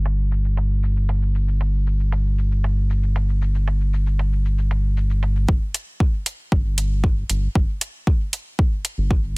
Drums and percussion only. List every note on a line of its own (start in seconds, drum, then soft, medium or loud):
0.06 closed hi-hat medium
0.31 cabasa medium
0.44 cabasa soft
0.57 closed hi-hat medium
0.83 cabasa medium
0.96 cabasa soft
1.09 closed hi-hat medium
1.22 cabasa soft
1.35 cabasa medium
1.48 cabasa soft
1.61 closed hi-hat medium
1.87 cabasa medium
2.00 cabasa soft
2.12 closed hi-hat medium
2.38 cabasa medium
2.51 cabasa soft
2.64 closed hi-hat medium
2.90 cabasa medium
3.03 cabasa soft
3.16 closed hi-hat medium
3.29 cabasa soft
3.42 cabasa medium
3.55 cabasa soft
3.68 closed hi-hat medium
3.81 cabasa soft
3.93 cabasa medium
4.06 cabasa soft
4.19 closed hi-hat medium
4.32 cabasa soft
4.45 cabasa medium
4.58 cabasa soft
4.71 closed hi-hat medium
4.97 cabasa medium
5.10 cabasa soft
5.23 closed hi-hat medium
5.36 cabasa soft
5.49 kick loud
5.74 closed hi-hat medium
6.00 kick loud
6.26 closed hi-hat medium
6.52 kick loud
6.78 closed hi-hat medium
7.04 kick loud
7.30 closed hi-hat medium
7.55 kick loud
7.81 closed hi-hat medium
8.07 kick loud
8.33 closed hi-hat medium
8.59 kick loud
8.85 closed hi-hat medium
9.11 kick loud